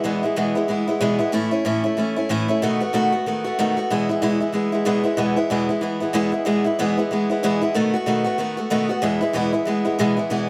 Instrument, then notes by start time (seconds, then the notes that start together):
steel-string acoustic guitar
0.04 E2 B2 E3 G#3 B3 E4
0.23 E3 G#3 B3 E4
0.36 E2 B2 E3 G#3 B3 E4
0.55 E3 G#3 B3 E4
0.68 E3 G#3 B3 E4
0.88 E3 G#3 B3 E4
1.01 E2 B2 E3 G#3 B3 E4
1.19 E3 G#3 B3 E4
1.32 A2 E3 A3 C#4 E4
1.51 A3 C#4 E4
1.65 A2 E3 A3 C#4 E4
1.84 A3 C#4 E4
1.97 E3 A3 C#4 E4
2.16 A3 C#4 E4
2.29 A2 E3 A3 C#4 E4
2.48 A3 C#4 E4
2.62 B2 D#3 A3 B3 F#4
2.80 A3 B3 F#4
2.93 B2 D#3 A3 B3 F#4
3.12 A3 B3 F#4
3.26 D#3 A3 B3 F#4
3.44 A3 B3 F#4
3.59 B2 D#3 A3 B3 F#4
3.77 A3 B3 F#4
3.90 E2 B2 E3 G#3 B3 E4
4.09 E3 G#3 B3 E4
4.22 E2 B2 E3 G#3 B3 E4
4.41 E3 G#3 B3 E4
4.53 E3 G#3 B3 E4
4.72 E3 G#3 B3 E4
4.85 E2 B2 E3 G#3 B3 E4
5.04 E3 G#3 B3 E4
5.17 E2 B2 E3 G#3 B3 E4
5.36 E3 G#3 B3 E4
5.50 E2 B2 E3 G#3 B3 E4
5.69 E3 G#3 B3 E4
5.81 E3 G#3 B3 E4
6.00 E3 G#3 B3 E4
6.13 E2 B2 E3 G#3 B3 E4
6.32 E3 G#3 B3 E4
6.45 E2 B2 E3 G#3 B3 E4
6.64 E3 G#3 B3 E4
6.79 E2 B2 E3 G#3 B3 E4
6.97 E3 G#3 B3 E4
7.11 E3 G#3 B3 E4
7.30 E3 G#3 B3 E4
7.43 E2 B2 E3 G#3 B3 E4
7.61 E3 G#3 B3 E4
7.75 B2 D#3 A3 B3 F#4
7.94 A3 B3 F#4
8.06 B2 D#3 A3 B3 F#4
8.24 A3 B3 F#4
8.38 D#3 A3 B3 F#4
8.57 A3 B3 F#4
8.70 B2 D#3 A3 B3 F#4
8.89 A3 B3 F#4
9.02 E2 B2 E3 G#3 B3 E4
9.21 E3 G#3 B3 E4
9.33 E2 B2 E3 G#3 B3 E4
9.53 E3 G#3 B3 E4
9.65 E3 G#3 B3 E4
9.85 E3 G#3 B3 E4
9.99 E2 B2 E3 G#3 B3 E4
10.17 E3 G#3 B3 E4
10.30 E2 B2 E3 G#3 B3 E4